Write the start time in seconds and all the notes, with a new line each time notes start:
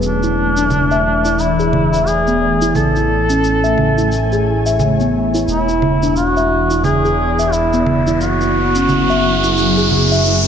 Already playing: A3 E4
0.02 E1 E3 D4, cabasa
0.19 D5
0.23 E4, cabasa
0.57 D4, cabasa
0.70 low conga, cabasa
0.91 E5, cabasa
1.25 E4, cabasa
1.39 E4, cabasa
1.59 G#4, cabasa
1.73 low conga
1.93 E5, cabasa
2.07 G#4, cabasa
2.27 B3, cabasa
2.62 E4, cabasa
2.75 A1 A3 A4, low conga, cabasa
2.96 E4, cabasa
3.04 G#5
3.17 E4
3.30 C#4, cabasa
3.44 cabasa
3.64 E5, cabasa
3.78 low conga
3.89 C#5
3.98 E4, cabasa
4.12 cabasa
4.32 G#4, cabasa
4.66 E5, cabasa
4.80 low conga, cabasa
5.00 B3, cabasa
5.34 E4, cabasa
5.48 E1 E3 E4, riser, cabasa
5.69 E4, cabasa
5.74 B3
5.82 low conga
6.03 D4, cabasa
6.10 D5
6.16 F#4, cabasa
6.37 E5, cabasa
6.70 E4, cabasa
6.84 G#4, low conga, cabasa
7.05 G#4, cabasa
7.39 E5, cabasa
7.53 E4, cabasa
7.73 B3, cabasa
7.87 low conga
8.07 E4, cabasa
8.21 F#1 F#3 F#4, cabasa
8.41 E4, cabasa
8.62 G#4
8.75 C#4, cabasa
8.89 low conga, cabasa
9.10 E5, cabasa
9.44 E4, cabasa
9.57 cabasa
9.77 G#4, cabasa
9.91 low conga
10.12 E5, cabasa
10.25 cabasa